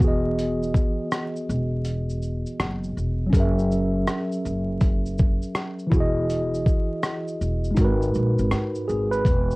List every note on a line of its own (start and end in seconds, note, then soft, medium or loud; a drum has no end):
0.00 0.70 E1 medium
0.00 2.89 E3 medium
0.00 2.91 B3 medium
0.00 2.93 F#4 medium
0.00 kick loud
0.00 shaker soft
0.04 2.94 G#4 medium
0.04 2.96 D#5 medium
0.39 closed hi-hat medium
0.39 shaker medium
0.63 shaker soft
0.74 kick medium
0.74 shaker medium
1.12 cross-stick loud
1.12 closed hi-hat medium
1.12 shaker medium
1.36 shaker medium
1.49 2.42 E1 loud
1.49 shaker medium
1.85 closed hi-hat medium
1.85 shaker medium
2.10 shaker soft
2.22 shaker soft
2.46 shaker soft
2.60 2.94 F#1 loud
2.60 cross-stick loud
2.60 closed hi-hat medium
2.60 shaker medium
2.83 shaker soft
2.97 3.31 E1 medium
2.97 shaker soft
3.27 5.85 F#3 medium
3.27 5.87 C#4 medium
3.33 4.03 F#1 loud
3.33 5.88 G#4 medium
3.33 5.90 A#4 medium
3.33 kick loud
3.33 closed hi-hat medium
3.33 shaker medium
3.40 5.92 E5 medium
3.59 shaker soft
3.72 shaker soft
4.07 cross-stick loud
4.07 closed hi-hat medium
4.07 shaker medium
4.32 shaker soft
4.45 5.38 F#1 loud
4.45 shaker medium
4.81 kick medium
4.81 closed hi-hat medium
4.81 shaker medium
5.06 shaker soft
5.18 kick loud
5.18 shaker soft
5.42 shaker soft
5.55 cross-stick loud
5.55 closed hi-hat medium
5.55 shaker medium
5.79 shaker soft
5.87 7.71 E3 medium
5.87 7.73 E4 medium
5.92 6.62 E1 medium
5.92 7.74 F#4 medium
5.92 kick medium
5.92 shaker soft
5.97 7.76 G#4 medium
5.97 7.78 D#5 medium
6.30 closed hi-hat medium
6.30 shaker medium
6.54 shaker soft
6.66 kick loud
6.66 shaker soft
7.03 cross-stick loud
7.03 closed hi-hat medium
7.03 shaker medium
7.28 shaker soft
7.41 7.75 E1 medium
7.41 shaker medium
7.64 shaker soft
7.71 9.19 G#3 medium
7.71 9.21 D#4 medium
7.77 8.12 G#1 loud
7.77 9.23 F#4 medium
7.77 kick medium
7.77 closed hi-hat medium
7.77 shaker medium
7.81 9.25 A#4 medium
7.81 9.10 B4 medium
8.02 shaker soft
8.14 8.37 A#1 medium
8.14 shaker soft
8.38 8.51 G#1 medium
8.38 shaker soft
8.51 8.86 G#2 medium
8.51 cross-stick loud
8.51 closed hi-hat medium
8.51 shaker medium
8.75 shaker soft
8.88 9.23 G#1 loud
8.88 9.13 G#4 medium
8.88 shaker soft
9.11 9.56 B4 loud
9.11 shaker soft
9.25 9.56 E1 loud
9.25 kick loud
9.25 closed hi-hat medium
9.25 shaker medium
9.51 shaker soft